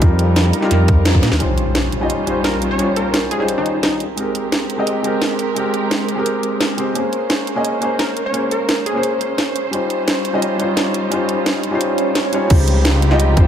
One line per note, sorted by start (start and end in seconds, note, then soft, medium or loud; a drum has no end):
0.00 0.53 F2 loud
0.00 0.59 G3 medium
0.00 1.39 G3 medium
0.00 0.60 D#4 medium
0.00 1.39 D#4 medium
0.00 0.61 F4 medium
0.00 1.39 A#4 medium
0.00 0.62 A#4 medium
0.00 kick loud
0.00 closed hi-hat medium
0.19 closed hi-hat medium
0.36 snare loud
0.36 closed hi-hat medium
0.45 snare soft
0.53 closed hi-hat medium
0.61 1.37 G3 loud
0.61 1.38 D#4 medium
0.61 1.39 F4 medium
0.61 snare soft
0.65 1.39 A#4 loud
0.71 1.23 F2 medium
0.71 snare soft
0.71 closed hi-hat loud
0.88 kick loud
0.88 closed hi-hat medium
1.05 snare loud
1.05 closed hi-hat loud
1.15 kick medium
1.23 1.31 A#2 loud
1.23 snare medium
1.23 closed hi-hat medium
1.32 1.40 D#2 medium
1.32 snare medium
1.39 1.98 G3 medium
1.39 3.98 G3 medium
1.39 1.99 C#4 medium
1.39 3.98 C#4 medium
1.39 3.98 D#4 medium
1.39 1.99 D#4 medium
1.39 3.98 F4 medium
1.39 2.00 F4 medium
1.39 3.98 C5 medium
1.39 closed hi-hat medium
1.39 impact medium
1.43 2.00 C5 medium
1.58 closed hi-hat medium
1.75 snare loud
1.75 closed hi-hat medium
1.92 closed hi-hat medium
2.00 2.24 G3 medium
2.00 2.25 C#4 medium
2.00 2.25 D#4 medium
2.00 2.26 F4 medium
2.00 2.26 D#5 loud
2.10 closed hi-hat medium
2.25 2.76 G3 medium
2.25 2.77 C#4 medium
2.25 2.77 D#4 medium
2.25 2.78 F4 medium
2.25 2.78 C5 medium
2.25 closed hi-hat medium
2.44 2.65 A#4 medium
2.44 snare loud
2.44 closed hi-hat medium
2.62 closed hi-hat medium
2.71 2.92 C#5 medium
2.77 3.36 G3 medium
2.77 3.37 C#4 medium
2.77 3.38 D#4 medium
2.77 3.38 F4 medium
2.77 closed hi-hat medium
2.81 3.39 C5 medium
2.96 3.30 A#4 medium
2.96 closed hi-hat medium
3.14 snare loud
3.14 closed hi-hat medium
3.31 3.37 G#4 medium
3.31 closed hi-hat medium
3.38 3.98 G3 medium
3.38 3.99 C#4 medium
3.38 4.00 D#4 medium
3.38 4.00 F4 medium
3.38 3.45 G#4 medium
3.42 4.01 C5 loud
3.48 closed hi-hat medium
3.58 3.78 D#4 medium
3.66 closed hi-hat medium
3.83 4.04 D#4 medium
3.83 snare loud
3.83 closed hi-hat medium
4.00 9.69 G#3 medium
4.00 6.92 C4 medium
4.00 6.92 G4 medium
4.00 6.92 A#4 medium
4.00 closed hi-hat medium
4.16 4.76 G#3 medium
4.16 4.76 C4 medium
4.16 4.77 G4 medium
4.16 closed hi-hat medium
4.20 4.78 A#4 medium
4.35 closed hi-hat medium
4.52 snare loud
4.52 closed hi-hat medium
4.70 closed hi-hat medium
4.78 5.01 G#3 medium
4.78 5.02 C4 medium
4.78 5.03 G4 medium
4.78 5.03 D#5 medium
4.87 closed hi-hat medium
5.03 5.53 G#3 medium
5.03 5.54 C4 medium
5.03 5.55 G4 medium
5.03 closed hi-hat medium
5.07 5.56 A#4 medium
5.22 snare loud
5.22 closed hi-hat medium
5.39 closed hi-hat medium
5.55 6.14 G#3 medium
5.55 6.15 C4 medium
5.55 6.16 G4 medium
5.55 closed hi-hat medium
5.59 6.17 A#4 medium
5.74 closed hi-hat medium
5.91 snare loud
5.91 closed hi-hat medium
6.09 closed hi-hat medium
6.15 6.75 G#3 medium
6.15 6.76 C4 medium
6.15 6.77 G4 medium
6.19 6.77 A#4 loud
6.26 closed hi-hat medium
6.43 closed hi-hat medium
6.61 snare loud
6.61 closed hi-hat medium
6.77 6.93 G#3 medium
6.77 6.93 C4 medium
6.77 6.94 G4 medium
6.77 6.94 C5 medium
6.77 closed hi-hat medium
6.94 7.53 A#3 medium
6.94 7.54 C#4 medium
6.94 12.46 C#4 medium
6.94 7.55 G#4 medium
6.94 9.70 A#4 medium
6.94 12.46 C5 medium
6.94 closed hi-hat medium
6.98 7.55 C5 medium
7.13 closed hi-hat medium
7.30 snare loud
7.30 closed hi-hat medium
7.47 closed hi-hat medium
7.55 7.79 A#3 medium
7.55 7.80 C#4 medium
7.55 7.80 G#4 medium
7.55 7.81 D#5 medium
7.65 closed hi-hat medium
7.80 8.30 A#3 medium
7.80 8.32 C#4 medium
7.80 8.32 G#4 medium
7.80 closed hi-hat medium
7.84 8.33 C5 loud
7.99 8.20 A#4 medium
7.99 snare loud
7.99 closed hi-hat medium
8.17 closed hi-hat medium
8.26 8.47 C#5 medium
8.32 8.91 A#3 medium
8.32 8.92 C#4 medium
8.32 8.93 G#4 medium
8.32 closed hi-hat medium
8.36 8.94 C5 medium
8.51 8.85 A#4 medium
8.51 closed hi-hat medium
8.69 snare loud
8.69 closed hi-hat medium
8.86 9.12 G#4 medium
8.86 closed hi-hat medium
8.93 9.70 A#3 medium
8.93 9.70 C#4 medium
8.93 9.71 G#4 medium
8.97 9.72 C5 loud
9.03 closed hi-hat medium
9.21 closed hi-hat medium
9.38 snare loud
9.38 closed hi-hat medium
9.56 closed hi-hat medium
9.71 10.31 G3 medium
9.71 12.48 G3 medium
9.71 10.31 C#4 medium
9.71 12.48 D#4 medium
9.71 10.32 D#4 medium
9.71 12.48 F4 medium
9.71 10.32 F4 medium
9.71 closed hi-hat medium
9.75 10.33 C5 medium
9.90 closed hi-hat medium
10.08 snare loud
10.08 closed hi-hat medium
10.25 closed hi-hat medium
10.33 10.56 G3 medium
10.33 10.57 C#4 medium
10.33 10.58 D#4 medium
10.33 10.58 F4 medium
10.33 10.58 D#5 loud
10.42 closed hi-hat medium
10.58 11.08 G3 medium
10.58 11.09 C#4 medium
10.58 11.10 D#4 medium
10.58 11.10 F4 medium
10.58 closed hi-hat medium
10.62 11.11 C5 loud
10.77 snare loud
10.77 closed hi-hat medium
10.94 closed hi-hat medium
11.10 11.69 G3 medium
11.10 11.70 C#4 medium
11.10 11.71 D#4 medium
11.10 11.71 F4 medium
11.10 closed hi-hat medium
11.14 11.72 C5 medium
11.29 closed hi-hat medium
11.46 snare loud
11.46 closed hi-hat medium
11.63 closed hi-hat medium
11.71 12.30 G3 medium
11.71 12.31 C#4 medium
11.71 12.32 D#4 medium
11.71 12.32 F4 medium
11.75 12.32 C5 loud
11.81 closed hi-hat medium
11.81 swell medium
11.98 closed hi-hat medium
12.15 snare loud
12.15 closed hi-hat medium
12.32 12.47 G3 medium
12.32 12.48 C#4 medium
12.32 12.48 D#4 medium
12.32 12.49 F4 medium
12.32 12.49 C#5 medium
12.32 closed hi-hat medium
12.49 13.39 C#2 loud
12.49 13.47 F3 medium
12.49 13.08 G3 medium
12.49 13.47 C4 medium
12.49 13.09 D#4 medium
12.49 13.47 D#4 medium
12.49 13.10 F4 medium
12.49 13.47 G4 medium
12.49 kick loud
12.49 closed hi-hat medium
12.49 crash medium
12.53 13.10 C5 medium
12.68 closed hi-hat medium
12.85 snare loud
12.85 closed hi-hat medium
13.02 closed hi-hat medium
13.10 13.34 G3 medium
13.10 13.35 D#4 medium
13.10 13.35 F4 medium
13.10 13.36 D#5 loud
13.10 snare soft
13.20 closed hi-hat loud
13.36 13.47 G#1 loud
13.36 13.47 G3 medium
13.36 13.47 D#4 medium
13.36 13.47 F4 medium
13.36 kick loud
13.36 closed hi-hat medium
13.40 13.47 C5 loud